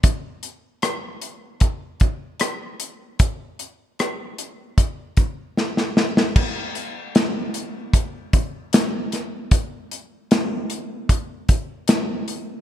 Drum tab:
CC |----------------|----------------|x---------------|----------------|
HH |x-x-x-x-x-x-x-x-|x-x-x-x-x-x-----|--x-x-x-x-x-x-x-|x-x-x-x-x-x-x-x-|
SD |----r-------r---|----r-------oooo|----o-------o-o-|----o-------o---|
BD |o-------o-o-----|o-------o-o-----|o-------o-o-----|o-------o-o-----|